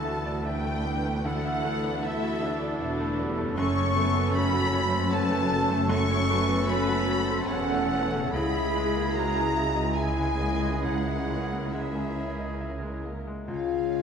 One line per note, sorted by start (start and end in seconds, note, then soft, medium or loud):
0.00 1.22 D2 medium
0.00 2.81 D2 medium
0.00 3.42 E3 medium
0.00 0.65 A3 medium
0.00 0.85 B3 medium
0.00 0.96 E4 medium
0.00 3.42 E4 medium
0.00 0.17 F#4 medium
0.00 0.45 F#4 medium
0.00 0.45 A4 medium
0.00 0.95 A4 medium
0.00 0.05 E5 medium
0.00 0.45 A5 medium
0.00 0.45 A5 loud
0.00 0.45 A5 medium
0.05 0.37 E5 soft
0.26 0.46 D5 medium
0.44 1.24 D4 medium
0.44 1.25 B4 medium
0.44 0.78 E5 medium
0.44 1.25 G5 loud
0.44 1.26 G5 medium
0.44 1.26 G5 loud
0.65 0.97 A3 medium
0.85 1.05 B3 soft
1.05 1.37 A3 medium
1.25 3.54 D2 medium
1.25 2.02 D4 medium
1.25 2.00 E4 medium
1.25 1.99 A4 medium
1.25 1.63 A4 medium
1.25 2.03 F#5 loud
1.25 2.02 F#5 medium
1.25 2.02 F#5 loud
1.45 1.76 E5 medium
1.64 1.96 A3 medium
1.64 2.02 A4 medium
1.84 2.04 B3 medium
2.03 2.34 A3 medium
2.03 3.60 E4 medium
2.03 2.42 E4 medium
2.03 3.55 A4 medium
2.03 2.80 A4 medium
2.03 2.81 E5 medium
2.03 2.81 E5 loud
2.03 2.81 E5 medium
2.23 2.54 F#4 medium
2.42 3.59 D4 medium
2.42 2.73 E5 medium
2.62 2.81 D5 medium
2.81 3.56 E1 medium
2.81 3.57 E2 medium
2.81 3.19 F#4 medium
2.81 3.12 E5 medium
3.00 3.31 A3 medium
3.19 3.58 G3 medium
3.19 3.39 B3 medium
3.38 7.30 F#2 medium
3.38 3.58 A3 medium
3.45 7.35 C#4 medium
3.49 7.39 A4 medium
3.54 7.47 F#1 medium
3.54 5.86 F#2 medium
3.54 7.44 C#5 medium
3.54 4.30 C#6 loud
3.54 4.31 C#6 loud
3.58 7.48 F#2 medium
3.58 8.30 A3 medium
3.58 5.12 C#4 medium
3.58 8.29 C#4 medium
3.58 3.96 C#4 medium
3.58 4.34 A4 medium
3.58 5.09 A4 medium
3.58 4.31 C#6 loud
3.77 4.08 C#5 medium
3.97 4.27 A3 medium
3.97 4.35 B3 medium
4.16 4.35 B3 medium
4.34 4.65 A3 medium
4.34 4.74 C#4 medium
4.34 4.73 F#4 medium
4.34 5.12 B5 loud
4.53 4.84 F#4 medium
4.73 5.90 F#4 medium
4.73 5.04 C#5 medium
4.92 5.11 C5 medium
5.11 5.89 C#4 medium
5.11 5.89 A4 medium
5.11 5.51 B4 medium
5.11 5.42 C#5 medium
5.11 5.90 A5 loud
5.11 5.88 A5 loud
5.11 5.90 A5 loud
5.31 5.62 A3 medium
5.50 5.70 B3 medium
5.50 5.90 A4 medium
5.70 6.02 A3 medium
5.89 7.43 F#2 medium
5.89 7.31 C#4 medium
5.89 6.67 F#4 medium
5.89 6.29 A4 medium
5.89 7.45 A4 loud
5.89 6.67 C#6 loud
5.89 6.69 C#6 loud
6.10 6.41 C#5 medium
6.29 6.61 A3 medium
6.29 6.68 B4 medium
6.49 6.68 B3 medium
6.68 7.00 A3 medium
6.68 7.46 F#4 medium
6.68 7.07 B4 medium
6.68 7.47 B5 loud
6.68 7.48 B5 loud
6.88 7.20 F#4 medium
7.08 7.47 A4 medium
7.08 7.40 C#5 medium
7.28 7.48 C5 medium
7.47 8.31 E1 medium
7.47 8.31 E2 medium
7.47 8.31 C#4 medium
7.47 8.31 A4 medium
7.47 8.32 A4 medium
7.47 7.81 C#5 medium
7.47 8.32 F#5 loud
7.47 8.33 F#5 loud
7.47 8.34 F#5 loud
7.69 8.03 A3 medium
7.91 8.12 B3 medium
8.13 12.05 C#3 medium
8.13 8.33 A3 medium
8.20 12.10 E4 medium
8.24 12.14 G#4 medium
8.29 13.26 C#2 medium
8.29 13.10 G#3 medium
8.29 9.12 E4 medium
8.29 9.14 G#4 medium
8.29 12.19 C#5 medium
8.29 9.12 B5 loud
8.33 13.27 C#2 medium
8.33 10.80 C#2 medium
8.33 13.10 E4 medium
8.33 9.92 E4 medium
8.33 9.80 G#4 medium
8.33 9.15 B5 loud
8.55 8.87 E5 medium
8.75 9.06 G#3 medium
8.95 9.14 A#3 medium
9.14 9.47 G#3 medium
9.14 9.96 F#4 medium
9.14 9.54 A#4 medium
9.14 9.96 A#5 loud
9.14 9.95 A#5 loud
9.35 9.67 G#4 soft
9.54 9.95 G#4 medium
9.54 9.88 E5 medium
9.76 9.96 D#5 soft
9.95 11.70 E4 medium
9.95 10.39 E4 medium
9.95 10.83 G#4 medium
9.95 11.70 G#4 medium
9.95 10.31 E5 soft
9.95 10.83 G#5 medium
9.95 10.83 G#5 loud
9.95 10.53 G#5 medium
10.18 10.53 G#3 medium
10.39 10.62 A#3 soft
10.39 10.83 D#5 medium
10.62 10.98 G#3 medium
10.83 13.44 C#2 medium
10.83 13.26 C#4 soft
10.83 13.22 A#4 medium
10.83 11.71 F#5 medium
10.83 11.73 F#5 medium
10.83 11.72 F#5 medium
11.07 11.42 E5 soft
11.29 11.64 G#3 soft
11.50 11.73 A#3 soft
11.72 12.08 G#3 soft
11.72 13.11 E4 medium
11.72 13.11 G#4 medium
11.72 12.61 E5 medium
11.95 12.30 G#4 soft
12.17 12.52 E5 soft
12.39 12.61 D#5 soft
12.61 12.96 E5 soft
12.82 13.18 G#3 soft
13.05 13.27 A#3 soft
13.27 13.48 G#3 soft
13.48 14.02 C#2 medium
13.48 14.02 C#3 medium
13.48 14.02 G#3 soft
13.48 14.02 F4 medium
13.48 14.02 C#5 medium
13.48 14.02 F5 medium
13.48 14.02 G#5 medium
13.77 14.02 G#3 soft